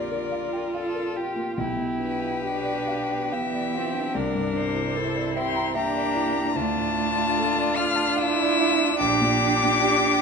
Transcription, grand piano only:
Already playing: A#1 F2 A#3 F4 G4
0.11 A#4
0.32 F5
0.53 G5
0.74 F5
0.95 A#4
1.15 F4
1.36 A#3
1.57 B1
1.77 B2
1.99 D4
2.20 F4
2.42 G4
2.63 D5
2.88 F5
3.11 G5
3.32 F5
3.54 D5
3.74 F4
3.94 D4
4.15 C2
4.35 G2
4.53 D4
4.75 E4
4.95 A#4
5.16 D5
5.36 E5
5.56 A#5
5.74 E5
5.95 D5
6.14 E4
6.36 D4
6.56 D2
6.76 A2
6.97 D4
7.17 F4
7.37 A4
7.57 D5
7.76 F5
7.96 A5
8.17 F5
8.36 D5
8.59 F4
8.79 D4
9.00 A#1
9.21 A#2
9.41 D4
9.63 A#2
9.83 G4
10.03 D5

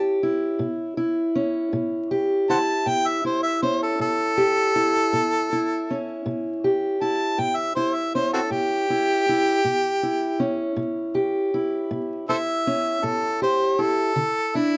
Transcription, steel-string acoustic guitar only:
Already playing: A2 C#4 E4 G4
0.23 E4
0.59 A2
0.97 E4
1.35 C#4
1.73 A2
2.11 G4
2.49 E4
2.86 A2
3.25 E4
3.62 C#4
3.99 A2
4.38 G4
4.76 E4
5.13 A2
5.53 E4
5.90 C#4
6.26 A2
6.64 G4
7.01 E4
7.38 A2
7.77 E4
8.15 C#4
8.51 A2
8.90 E4
9.29 E4
9.65 A2
10.03 E4
10.40 C#4
10.76 A2
11.15 G4
11.54 E4
11.91 A2
12.29 E4
12.67 C#4
13.03 A2
13.42 G4
13.79 E4
14.16 D3
14.55 D4

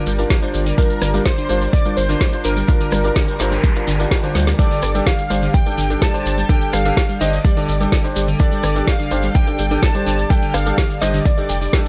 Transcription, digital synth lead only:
0.78 A#4
1.26 C5
1.73 D5
1.97 C5
2.45 A#4
4.59 D5
5.07 F5
5.54 G5
6.02 A5
6.49 G5
6.73 F5
7.21 D#5
7.45 D5
8.40 D5
8.87 F5
9.35 G5
9.82 A5
10.30 G5
10.54 F5
11.01 D#5
11.25 D5

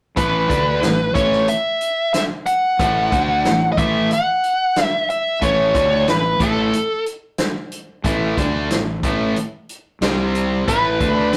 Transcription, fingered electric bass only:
0.17 A1
0.50 D2
0.84 A1
1.15 A1
2.79 A1
3.12 D2
3.45 A1
3.78 A1
5.41 A1
5.74 D2
6.08 A1
6.40 A1
8.04 A1
8.37 D2
8.71 A1
9.03 A1
10.01 C2
10.68 A1
11.00 D2

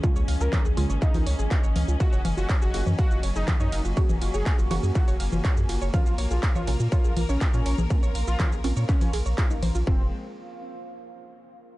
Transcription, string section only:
Already playing: F3 C#4
0.03 A#3
2.00 F#3 A#3
5.94 A#4
9.87 F3 G#3 C4

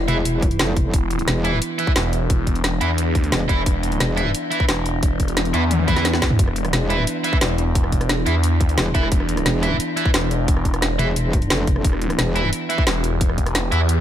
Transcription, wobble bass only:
0.08 E1
0.59 F1
1.28 E1
3.32 E1
4.00 E1
6.73 E1
8.78 E1
9.46 E1
10.99 E1
11.50 F1
12.19 E1

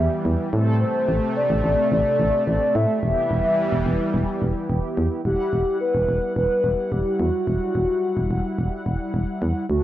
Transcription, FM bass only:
0.25 E2
0.53 A2
1.09 A1
1.50 A1
1.64 A1
1.92 A1
2.20 A1
2.47 A1
2.75 A2
3.03 E1
3.31 E1
3.72 E1
3.86 E1
4.14 E1
4.42 E1
4.70 E1
4.97 E2
5.25 E1
5.53 E1
5.95 E1
6.09 E1
6.36 E1
6.64 E1
6.92 E1
7.20 E2
7.47 E1
7.75 E1
8.17 E1
8.31 E1
8.58 E1
8.86 E1
9.14 E1
9.42 E2
9.70 D2

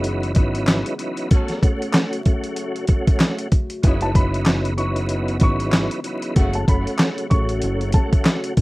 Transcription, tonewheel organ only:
Already playing: F#3 C#4 D#4 E4 B4
0.34 F#3 C#4 D#4 E4 B4
0.98 F#3 C#4 D#4 E4 B4
1.29 A3 C#4 F#4
1.61 A3 C#4 F#4
2.27 A3 C#4 F#4
2.88 A3 C#4 F#4
3.82 F#3 C#4 D#4 E4 B4
4.13 F#3 C#4 D#4 E4 B4
4.77 F#3 C#4 D#4 E4 B4
5.39 F#3 C#4 D#4 E4 B4
6.04 F#3 C#4 D#4 E4 B4
6.34 A3 C#4 F#4
6.67 A3 C#4 F#4
7.32 A3 C#4 F#4
7.94 A3 C#4 F#4

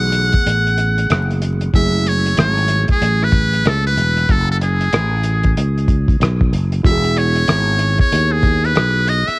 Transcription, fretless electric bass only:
Already playing: B1
0.34 muted fretless electric bass stroke
0.46 A1
1.10 F#1
1.74 F#1
2.38 G#1
3.02 A1
3.66 C#2
3.97 E1
4.29 F#1
4.93 A1
5.57 C#2
6.20 B1
6.53 F#1
6.85 E1
7.48 G#1
8.00 muted fretless electric bass stroke
8.13 D#2
8.76 B1
9.28 muted fretless electric bass stroke

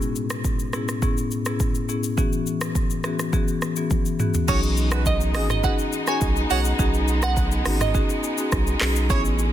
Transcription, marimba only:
Already playing: A2 B3 C#4 E4 G#4
0.73 A2 B3 C#4 E4 G#4
1.02 A2 B3 C#4 E4 G#4
1.46 A2 B3 C#4 E4 G#4
1.89 A2 B3 C#4 E4 G#4
2.17 E3 B3 C#4 F#4 G#4
3.04 E3 B3 C#4 F#4 G#4
3.33 E3 B3 C#4 F#4 G#4
3.77 E3 B3 C#4 F#4 G#4
4.19 E3 B3 C#4 F#4 G#4
4.48 C#4 D#4 F#4 G#4
5.35 C#4 D#4 F#4 G#4
5.64 C#4 D#4 F#4 G#4
6.08 C#4 D#4 F#4 G#4
6.50 C#4 D#4 F#4 G#4
6.79 C#4 D#4 F#4 G#4
7.66 C#4 D#4 F#4 G#4
7.94 C#4 D#4 F#4 G#4
8.38 C#4 D#4 F#4 G#4
8.81 C#4 D#4 F#4 G#4
9.10 B3 C#4 E4 G#4

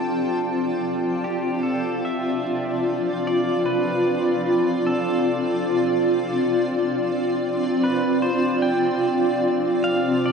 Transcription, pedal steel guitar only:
Already playing: A4
1.24 G4
1.63 A4
2.05 E5
3.27 D5
3.66 B4
4.87 A4
7.84 B4
8.22 C5
8.62 G5
9.84 F5
10.26 D5

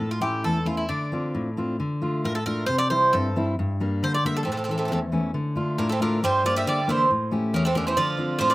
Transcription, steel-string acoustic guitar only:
0.00 A2
0.20 A3 C#4 E4
0.44 E2
0.65 A3 C#4 E4
0.89 D3
1.12 C4 D4 F4
1.35 A2
1.57 C4 D4 F4
1.80 D3
2.02 A3 D4 F4
2.24 A2
2.46 A3 D4 F4
2.69 C3
2.91 G3 C4 E4
3.14 G2
3.36 G3 C4 E4
3.59 G2
3.80 G3 A#3 D4
4.03 D3
4.25 G3 A#3 D4
4.47 A2
4.68 E3 A3 C#4
4.91 E2
5.12 E3 A3 C#4
5.34 D3
5.56 A3 D4 F4
5.78 A2
6.00 A3 D4 F4
6.23 G2
6.44 A#3 D4 G4
6.67 D3
6.88 A#3 D4 G4
7.11 A2
7.31 A3 C#4 G4
7.53 E2
7.75 A3 C#4 G4
7.97 D3
8.17 C4 D4 F4
8.40 A2

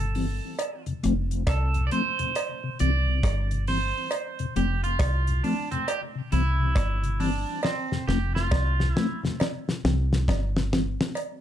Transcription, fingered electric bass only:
Already playing: G1
1.05 F1
1.48 C2
2.81 C2
3.24 G1
4.57 F1
5.00 C2
6.33 C2
6.76 G1
8.08 F1
8.52 C2
9.85 C2
10.29 G1

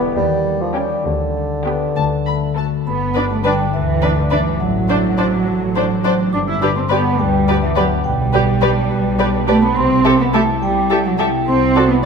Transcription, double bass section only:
0.16 D#2
1.06 D2
1.97 D2
2.87 G1
3.75 D2
4.61 A1
5.47 A1
6.33 G1
7.19 D2
8.05 B1
8.91 B1
9.76 C2
10.62 C2
11.48 C2

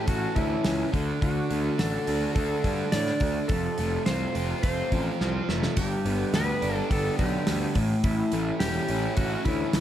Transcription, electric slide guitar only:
0.09 F#4
0.36 E4
1.22 F#4
1.80 A4
2.35 A4
2.92 D5
3.48 A4
4.06 C5
4.63 C5
5.78 G4
6.35 B4
6.76 A4
6.92 A4
7.19 G4
8.04 E4
8.59 G4
9.17 F#4
9.45 E4

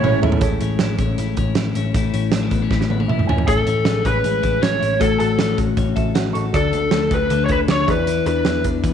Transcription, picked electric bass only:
0.03 A1
0.22 A1
0.42 A1
0.61 A1
0.80 A1
0.99 A1
1.18 A1
1.37 A1
1.56 A1
1.75 A1
1.94 A1
2.14 A1
2.32 A1
2.52 A1
2.71 A1
2.91 A1
3.09 A1
3.28 A1
3.48 A1
3.67 A1
3.86 A1
4.05 A1
4.25 A1
4.43 A1
4.63 A1
4.82 A1
5.01 A1
5.21 A1
5.40 A1
5.58 A1
5.77 A1
5.97 A1
6.16 A1
6.35 A1
6.54 D2
6.74 D2
6.93 D2
7.11 D2
7.31 D2
7.50 D2
7.68 D2
7.88 E2
8.26 E2
8.46 E2
8.65 E2
8.84 E2

